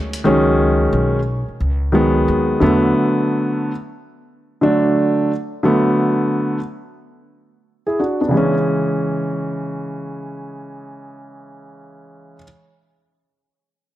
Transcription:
0.00 0.23 D2 medium
0.13 closed hi-hat soft
0.24 0.89 C#2 medium
0.24 1.18 D#3 medium
0.24 1.18 F#3 medium
0.24 1.18 G#3 medium
0.24 1.19 C#4 medium
0.93 1.45 B1 medium
1.48 muted upright bass stroke soft
1.60 2.24 C#2 medium
1.92 2.60 D#3 medium
1.92 2.59 F#3 medium
1.92 2.61 G#3 medium
1.92 2.61 B3 medium
2.28 2.60 D#2 medium
2.60 2.93 E2 medium
2.60 3.70 D3 medium
2.60 3.70 F#3 medium
2.60 3.71 A3 medium
2.60 3.71 B3 medium
4.61 5.30 D3 medium
4.61 5.30 F#3 medium
4.61 5.31 A3 medium
4.61 5.31 D4 medium
5.63 6.57 D3 medium
5.63 6.57 F#3 medium
5.63 6.57 A3 medium
5.63 6.58 B3 medium
7.87 7.99 E4 soft
7.87 7.99 G#4 medium
7.99 8.20 D4 soft
7.99 8.20 F#4 medium
8.21 8.53 B3 soft
8.21 8.53 D4 medium
8.28 12.36 C#3 medium
8.28 12.38 E3 medium
8.34 12.41 G#3 medium
8.34 12.44 C#4 medium

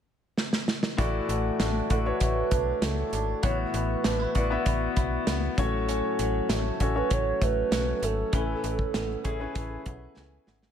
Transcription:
0.37 snare medium
0.53 snare medium
0.68 snare medium
0.83 snare medium
0.97 1.21 A1 loud
0.97 1.86 A2 medium
0.97 3.43 E3 medium
0.97 1.74 A3 medium
0.97 1.74 E4 medium
0.97 1.74 F#4 medium
0.97 1.91 F#4 medium
0.97 1.74 D5 medium
0.97 kick loud
0.97 closed hi-hat medium
1.29 1.51 A1 medium
1.29 2.20 A3 medium
1.29 closed hi-hat medium
1.60 1.82 A1 medium
1.60 2.51 D4 medium
1.60 snare loud
1.60 closed hi-hat medium
1.90 2.12 A1 medium
1.90 2.03 A3 medium
1.90 2.03 E4 medium
1.90 2.03 F#4 medium
1.90 3.43 F#4 medium
1.90 1.99 A4 medium
1.90 2.03 D5 medium
1.90 kick medium
1.90 closed hi-hat medium
2.05 3.06 A3 medium
2.05 3.07 E4 medium
2.05 3.07 F#4 medium
2.05 2.21 B4 medium
2.05 3.07 C#5 medium
2.20 2.43 A1 loud
2.20 2.81 A3 medium
2.20 2.85 B4 medium
2.20 kick medium
2.20 closed hi-hat medium
2.51 2.74 B1 medium
2.51 3.12 D4 medium
2.51 kick medium
2.51 closed hi-hat medium
2.82 3.04 C#2 medium
2.82 3.50 A3 medium
2.82 3.44 A4 medium
2.82 snare loud
2.82 closed hi-hat medium
3.13 3.35 G#1 medium
3.13 3.50 D4 medium
3.13 closed hi-hat medium
3.43 3.65 A1 loud
3.43 4.31 A2 medium
3.43 5.58 E3 medium
3.43 4.19 B3 medium
3.43 4.19 E4 medium
3.43 4.19 F#4 medium
3.43 4.35 F#4 medium
3.43 3.58 C#5 medium
3.43 4.20 E5 medium
3.43 kick loud
3.43 closed hi-hat medium
3.74 3.96 A1 loud
3.74 4.65 B3 medium
3.74 4.93 B4 medium
3.74 closed hi-hat medium
4.04 4.27 A1 medium
4.04 4.20 D4 medium
4.04 snare loud
4.04 closed hi-hat medium
4.20 4.95 E4 medium
4.35 4.57 A1 medium
4.35 4.48 B3 medium
4.35 4.48 E4 medium
4.35 7.85 F#4 medium
4.35 4.48 F#4 medium
4.35 4.48 D5 medium
4.35 kick medium
4.35 closed hi-hat medium
4.50 5.51 B3 medium
4.50 5.52 E4 medium
4.50 5.52 F#4 medium
4.50 5.52 E5 medium
4.66 4.88 A1 medium
4.66 5.26 B3 medium
4.66 kick medium
4.66 closed hi-hat medium
4.96 5.19 B1 medium
4.96 5.64 E4 medium
4.96 kick medium
4.96 closed hi-hat medium
5.27 5.49 C#2 loud
5.27 5.64 B3 medium
5.27 snare loud
5.27 closed hi-hat medium
5.58 6.02 A1 loud
5.58 6.46 A2 medium
5.58 5.87 F#3 medium
5.58 6.59 A3 medium
5.58 6.59 C#4 medium
5.58 6.59 F#4 medium
5.58 6.59 C#5 medium
5.58 kick loud
5.58 closed hi-hat medium
5.89 6.18 F#3 medium
5.89 6.80 C#4 medium
5.89 closed hi-hat medium
6.19 6.41 A1 loud
6.19 7.09 F#3 medium
6.19 closed hi-hat medium
6.49 6.71 A1 loud
6.49 7.41 A3 medium
6.49 snare loud
6.49 closed hi-hat medium
6.80 7.02 A1 loud
6.80 6.93 A3 medium
6.80 8.33 C#4 medium
6.80 6.93 C#4 medium
6.80 6.93 F#4 medium
6.80 6.99 A4 medium
6.80 6.93 C#5 medium
6.80 kick medium
6.80 closed hi-hat medium
6.95 7.96 A3 medium
6.95 7.96 C#4 medium
6.95 7.96 F#4 medium
6.95 7.14 B4 medium
6.95 7.97 C#5 medium
7.11 7.33 A1 loud
7.11 7.71 F#3 medium
7.11 7.44 C#5 loud
7.11 kick medium
7.11 closed hi-hat medium
7.41 7.64 A1 medium
7.41 8.02 A3 medium
7.41 8.06 B4 loud
7.41 kick medium
7.41 closed hi-hat medium
7.71 7.94 B1 medium
7.71 8.32 F#3 medium
7.71 snare loud
7.71 closed hi-hat medium
8.02 8.24 G#1 medium
8.02 8.94 A3 medium
8.02 10.48 A4 medium
8.02 closed hi-hat medium
8.33 8.55 A1 loud
8.33 9.21 A2 medium
8.33 8.63 E3 medium
8.33 9.09 A3 medium
8.33 9.24 C#4 medium
8.33 9.09 C#4 medium
8.33 9.09 E4 medium
8.33 9.10 B4 medium
8.33 kick loud
8.33 closed hi-hat medium
8.63 8.86 A1 medium
8.63 9.55 E3 medium
8.63 closed hi-hat medium
8.79 kick medium
8.94 9.16 A1 loud
8.94 9.85 B3 medium
8.94 snare loud
8.94 closed hi-hat medium
9.24 9.47 A1 medium
9.24 9.37 A3 medium
9.24 10.72 C#4 medium
9.24 9.37 C#4 medium
9.24 9.38 E4 medium
9.24 9.38 G#4 medium
9.24 kick medium
9.24 closed hi-hat medium
9.40 10.41 A3 medium
9.40 10.41 C#4 medium
9.40 10.41 E4 medium
9.40 10.42 B4 medium
9.55 9.78 A1 loud
9.55 10.16 E3 medium
9.55 kick medium
9.55 closed hi-hat medium
9.86 10.08 B1 loud
9.86 10.47 B3 medium
9.86 kick medium
9.86 closed hi-hat medium
10.16 10.39 C#2 medium
10.16 10.72 E3 medium
10.16 snare medium
10.47 10.69 G#1 medium
10.47 10.72 B3 medium
10.47 snare medium
10.63 snare medium

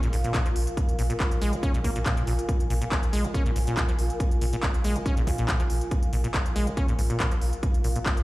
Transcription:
0.00 0.12 A#1 medium
0.00 0.08 A#2 medium
0.00 8.23 F4 medium
0.00 8.23 A#4 medium
0.00 8.23 F5 medium
0.00 8.23 G#5 medium
0.00 closed hi-hat medium
0.13 0.24 A#1 loud
0.13 0.17 G#2 medium
0.13 open hi-hat loud
0.24 0.33 A#2 medium
0.24 closed hi-hat medium
0.34 0.41 A#2 loud
0.34 kick loud
0.34 clap loud
0.34 closed hi-hat medium
0.46 0.55 A#1 medium
0.46 0.49 F3 medium
0.46 closed hi-hat medium
0.56 0.67 A#1 medium
0.56 open hi-hat loud
0.67 closed hi-hat medium
0.77 kick loud
0.77 closed hi-hat medium
0.89 0.98 A#1 medium
0.89 closed hi-hat medium
0.99 1.10 A#1 loud
0.99 1.02 A#2 medium
0.99 open hi-hat loud
1.10 1.13 A#2 medium
1.10 closed hi-hat medium
1.20 1.31 A#1 medium
1.20 kick loud
1.20 clap loud
1.20 closed hi-hat medium
1.32 1.41 A#1 medium
1.32 closed hi-hat medium
1.42 1.53 A#1 loud
1.42 1.54 G#3 loud
1.42 open hi-hat loud
1.53 1.56 A#2 medium
1.53 closed hi-hat medium
1.63 1.72 C#4 loud
1.63 kick loud
1.63 closed hi-hat medium
1.74 1.84 A#1 medium
1.74 1.80 A#2 medium
1.74 closed hi-hat soft
1.84 1.96 A#1 loud
1.84 1.91 A#3 medium
1.84 kick medium
1.84 open hi-hat loud
1.96 1.99 A#2 medium
1.96 closed hi-hat soft
2.06 2.15 A#2 medium
2.06 kick loud
2.06 clap loud
2.06 closed hi-hat medium
2.17 2.27 A#1 medium
2.17 2.23 A#2 medium
2.17 closed hi-hat medium
2.27 2.38 A#1 loud
2.27 2.34 A#2 medium
2.27 open hi-hat loud
2.39 closed hi-hat medium
2.49 kick loud
2.49 closed hi-hat medium
2.60 2.70 A#1 medium
2.60 closed hi-hat medium
2.70 2.81 A#1 loud
2.70 2.74 A#2 medium
2.70 open hi-hat loud
2.82 2.85 A#2 medium
2.82 closed hi-hat medium
2.92 3.02 A#1 medium
2.92 kick loud
2.92 clap loud
2.92 closed hi-hat soft
3.03 3.12 A#1 medium
3.03 closed hi-hat soft
3.13 3.24 A#1 loud
3.13 3.26 G#3 loud
3.13 open hi-hat loud
3.24 3.28 A#2 medium
3.24 closed hi-hat soft
3.34 3.44 C#4 loud
3.34 kick loud
3.34 closed hi-hat medium
3.46 3.55 A#1 medium
3.46 3.51 A#2 medium
3.46 closed hi-hat soft
3.56 3.67 A#1 loud
3.56 3.60 G#2 medium
3.56 open hi-hat loud
3.67 3.76 A#2 medium
3.67 closed hi-hat soft
3.77 3.84 A#2 loud
3.77 kick loud
3.77 clap loud
3.77 closed hi-hat medium
3.89 3.98 A#1 medium
3.89 3.92 F3 medium
3.89 closed hi-hat soft
3.99 4.10 A#1 loud
3.99 open hi-hat loud
4.10 closed hi-hat medium
4.20 kick loud
4.20 closed hi-hat medium
4.31 4.41 A#1 medium
4.31 closed hi-hat soft
4.41 4.53 A#1 medium
4.41 4.45 A#2 medium
4.41 open hi-hat loud
4.53 4.56 A#2 medium
4.53 closed hi-hat medium
4.63 4.74 A#1 medium
4.63 kick loud
4.63 clap loud
4.63 closed hi-hat soft
4.74 4.84 A#1 medium
4.74 closed hi-hat soft
4.84 4.96 A#1 loud
4.84 4.97 G#3 loud
4.84 open hi-hat loud
4.96 4.99 A#2 medium
4.96 closed hi-hat soft
5.06 5.15 C#4 loud
5.06 kick loud
5.06 closed hi-hat medium
5.17 5.26 A#1 medium
5.17 5.23 A#2 medium
5.17 closed hi-hat medium
5.27 5.38 A#1 loud
5.27 5.31 G#2 medium
5.27 kick medium
5.27 open hi-hat loud
5.38 5.47 A#2 medium
5.38 closed hi-hat soft
5.48 5.55 A#2 loud
5.48 kick loud
5.48 clap loud
5.48 closed hi-hat medium
5.60 5.69 A#1 medium
5.60 5.63 F3 medium
5.60 closed hi-hat soft
5.70 5.81 A#1 loud
5.70 open hi-hat loud
5.81 closed hi-hat soft
5.91 kick loud
5.91 closed hi-hat medium
6.03 6.12 A#1 medium
6.03 closed hi-hat medium
6.13 6.24 A#1 loud
6.13 6.17 A#2 medium
6.13 open hi-hat loud
6.24 6.28 A#2 medium
6.24 closed hi-hat medium
6.34 6.45 A#1 medium
6.34 kick loud
6.34 clap loud
6.34 closed hi-hat medium
6.46 6.55 A#1 medium
6.46 closed hi-hat medium
6.56 6.67 A#1 loud
6.56 6.69 G#3 loud
6.56 open hi-hat loud
6.67 6.70 A#2 medium
6.67 closed hi-hat soft
6.77 6.87 C#4 loud
6.77 kick loud
6.77 closed hi-hat medium
6.88 6.98 A#1 medium
6.88 6.94 A#2 medium
6.88 closed hi-hat medium
6.99 7.10 A#1 loud
6.99 7.02 G#2 medium
6.99 open hi-hat loud
7.10 7.18 A#2 medium
7.10 closed hi-hat medium
7.20 7.26 A#2 loud
7.20 kick loud
7.20 clap loud
7.20 closed hi-hat medium
7.31 7.41 A#1 medium
7.31 7.35 F3 medium
7.31 closed hi-hat medium
7.41 7.53 A#1 loud
7.41 open hi-hat medium
7.53 closed hi-hat medium
7.63 kick loud
7.63 closed hi-hat medium
7.74 7.84 A#1 medium
7.74 closed hi-hat medium
7.84 7.95 A#1 loud
7.84 7.88 A#2 medium
7.84 open hi-hat loud
7.96 7.99 A#2 medium
7.96 closed hi-hat medium
8.06 8.17 A#1 medium
8.06 kick loud
8.06 clap loud
8.06 closed hi-hat medium
8.17 8.23 A#1 medium
8.17 closed hi-hat medium

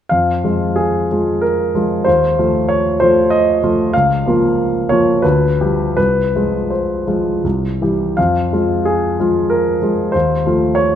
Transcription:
0.09 0.44 F2 soft
0.09 0.77 F5 medium
0.44 1.07 F3 soft
0.44 1.07 G#3 soft
0.44 1.08 F4 soft
0.76 1.42 G#4 medium
1.12 1.71 F3 soft
1.12 1.71 G#3 soft
1.12 1.71 F4 soft
1.41 2.05 A#4 medium
1.75 2.03 F3 soft
1.75 2.03 G#3 soft
1.75 2.03 F4 soft
2.05 2.37 D#2 soft
2.05 2.68 C5 medium
2.39 2.96 F3 soft
2.39 2.96 A3 soft
2.39 2.96 F4 soft
2.69 2.99 C#5 medium
3.00 3.59 F3 soft
3.00 3.59 A3 soft
3.00 3.59 F4 soft
3.00 3.31 C5 medium
3.30 3.93 D#5 medium
3.63 3.91 F3 soft
3.63 3.91 A3 soft
3.63 3.91 F4 soft
3.93 4.25 C#2 medium
3.93 4.89 F5 medium
4.26 4.86 F3 soft
4.26 4.86 A#3 soft
4.26 4.87 F4 soft
4.89 5.21 F3 soft
4.89 5.21 A#3 soft
4.89 5.21 F4 soft
4.89 5.23 C#5 medium
5.22 5.58 D2 soft
5.22 5.95 B4 medium
5.61 5.94 F3 soft
5.61 5.94 G3 soft
5.61 5.94 G4 soft
5.97 6.34 C2 soft
5.97 6.71 B4 medium
6.35 7.04 F3 soft
6.35 7.04 G#3 soft
6.35 7.04 F4 soft
6.70 7.44 C5 soft
7.07 7.40 F3 soft
7.07 7.40 G#3 soft
7.07 7.41 F4 soft
7.44 7.80 C2 soft
7.82 8.14 E3 soft
7.82 8.14 G3 soft
7.82 8.14 G4 soft
8.17 8.51 F2 soft
8.17 8.86 F5 medium
8.53 9.15 F3 soft
8.53 9.15 G#3 soft
8.53 9.16 F4 soft
8.85 9.51 G#4 medium
9.20 9.79 F3 soft
9.20 9.79 G#3 soft
9.20 9.79 F4 soft
9.50 10.14 A#4 medium
9.82 10.11 F3 soft
9.82 10.11 G#3 soft
9.82 10.11 F4 soft
10.12 10.44 D#2 soft
10.12 10.75 C5 medium
10.46 10.95 F3 soft
10.46 10.95 A3 soft
10.46 10.95 F4 soft
10.75 10.95 C#5 medium

